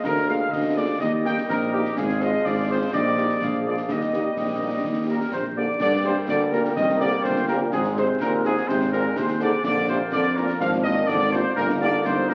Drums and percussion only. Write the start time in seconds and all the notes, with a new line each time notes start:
0.04 concert bass drum, snare
0.16 snare
0.29 snare
0.53 concert bass drum, snare
1.00 concert bass drum, snare
1.25 snare
1.38 snare
1.49 concert bass drum, snare
1.85 snare
1.97 concert bass drum, snare, crash
2.09 snare
2.20 snare
2.45 concert bass drum, snare
2.93 concert bass drum, snare
3.17 snare
3.29 snare
3.42 concert bass drum, snare
3.77 snare
3.89 concert bass drum, snare
4.01 snare
4.13 snare
4.36 concert bass drum, snare
4.84 concert bass drum, snare
5.32 concert bass drum, snare
5.80 concert bass drum, snare, crash
5.93 snare
6.04 snare
6.28 concert bass drum, snare
6.52 snare
6.65 snare
6.77 concert bass drum, snare
6.89 snare
7.01 snare
7.24 concert bass drum, snare
7.36 snare
7.48 snare
7.72 concert bass drum, snare
7.84 snare
7.97 snare
8.20 concert bass drum, snare
8.45 snare
8.57 snare
8.69 concert bass drum, snare
8.81 snare
8.93 snare
9.16 concert bass drum, snare
9.28 snare
9.40 snare
9.64 concert bass drum, snare, crash
9.76 snare
9.87 snare
10.12 concert bass drum, snare
10.36 snare
10.48 snare
10.61 concert bass drum, snare
10.73 snare
10.85 snare
11.08 concert bass drum, snare
11.21 snare
11.33 snare
11.57 concert bass drum, snare
11.70 snare
11.82 snare
12.05 concert bass drum, snare
12.30 snare